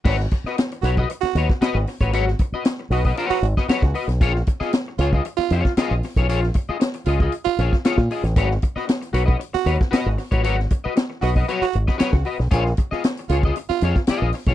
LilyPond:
<<
  \new Staff \with { instrumentName = "Clean electric guitar" } { \time 4/4 \key gis \dorian \tempo 4 = 116 <fis' b' cis''>16 r8 <fis' b' dis''>16 r8 <fis' b' cis''>16 <fis' b' dis''>16 r8 <fis' b' cis''>16 r16 <fis' b' dis''>16 r8 <fis' b' cis''>16 | <fis' b' cis''>16 r8 <fis' b' dis''>16 r8 <fis' b' dis''>16 <fis' b' dis''>16 <fis' b' cis''>8 r16 <fis' b' dis''>16 <fis' b' cis''>16 r16 <fis' b' dis''>16 r16 | <eis' gis' cis''>16 r8 <eis' gis' dis''>16 r8 <eis' gis' cis''>16 <eis' gis' dis''>16 r8 <eis' gis' cis''>8 <eis' gis' dis''>16 r8 <eis' gis' cis''>16 | <eis' gis' cis''>16 r8 <eis' gis' dis''>16 r8 <eis' gis' dis''>16 <eis' gis' dis''>16 r8 <eis' gis' cis''>16 r16 <eis' gis' cis''>16 r16 <eis' gis' dis''>16 r16 |
<fis' b' cis''>16 r8 <fis' b' dis''>16 r8 <fis' b' cis''>16 <fis' b' dis''>16 r8 <fis' b' cis''>16 r16 <fis' b' dis''>16 r8 <fis' b' cis''>16 | <fis' b' cis''>16 r8 <fis' b' dis''>16 r8 <fis' b' dis''>16 <fis' b' dis''>16 <fis' b' cis''>16 r8 <fis' b' dis''>16 <fis' b' cis''>16 r16 <fis' b' dis''>16 r16 | <eis' gis' cis''>16 r8 <eis' gis' dis''>16 r8 <eis' gis' cis''>16 <eis' gis' dis''>16 r8 <eis' gis' cis''>16 r16 <eis' gis' dis''>8 r16 <eis' gis' cis''>16 | }
  \new Staff \with { instrumentName = "Tenor saxophone" } { \time 4/4 \key gis \dorian r4. fis'16 r8 fis'8 r4 r16 | r4. fis'16 r8 fis'8 r4 r16 | r4. eis'16 r8 eis'8 r4 r16 | r4. eis'16 r8 eis'8 r4 r16 |
r4. fis'16 r8 fis'8 r4 r16 | r4. fis'16 r8 fis'8 r4 r16 | r4. eis'16 r8 eis'8 r4 r16 | }
  \new Staff \with { instrumentName = "Fingered electric bass" } { \clef bass \time 4/4 \key gis \dorian gis,,8 r4 b,,8 r8 dis,16 r8 gis,,16 r16 a,,16 | gis,,8 r4 b,,8 r8 gis,,16 r8 cis,16 r16 b,,16 | ais,,8 r4 cis,8 r8 eis,16 r8 ais,,16 r16 b,,16 | ais,,8 r4 cis,8 r8 ais,,16 r8 ais,16 r16 a,,16 |
gis,,8 r4 b,,8 r8 dis,16 r8 gis,,16 r16 a,,16 | gis,,8 r4 b,,8 r8 gis,,16 r8 cis,16 r16 b,,16 | ais,,8 r4 cis,8 r8 eis,16 r8 ais,,16 r16 b,,16 | }
  \new DrumStaff \with { instrumentName = "Drums" } \drummode { \time 4/4 <cymc bd>16 sn16 <hh bd>16 sn16 <hh sn>16 hh16 hh16 bd16 hh16 sn16 hh16 <bd sn>16 <hh sn>8 <hho sn>16 <hh bd>16 | hh16 sn16 <hh bd>8 <hh sn>8 hho16 bd16 hh8 hh16 <bd sn>16 <hh sn>16 <bd sn>16 hho16 <hh sn>16 | <hh bd>16 sn16 <hh bd>16 sn16 <hh sn>8 hh16 bd16 hh16 sn16 hh16 <bd sn>16 <hh sn>8 <hho sn>16 <hh bd>16 | hh16 sn16 <hh bd>8 <hh sn>16 hh16 hh16 bd16 hh8 hh16 <bd sn>16 <hh sn>16 <bd sn>16 hho16 <hh sn>16 |
<hh bd>16 sn16 <hh bd>16 sn16 <hh sn>16 hh16 hh16 bd16 hh16 sn16 hh16 <bd sn>16 <hh sn>8 <hho sn>16 <hh bd>16 | hh16 sn16 <hh bd>8 <hh sn>8 hho16 bd16 hh8 hh16 <bd sn>16 <hh sn>16 <bd sn>16 hho16 sn16 | <hh bd>16 sn16 <hh bd>16 sn16 <hh sn>16 hh16 hh16 bd16 hh16 sn16 hh16 <bd sn>16 <hh sn>8 <hho sn>16 <hh bd>16 | }
>>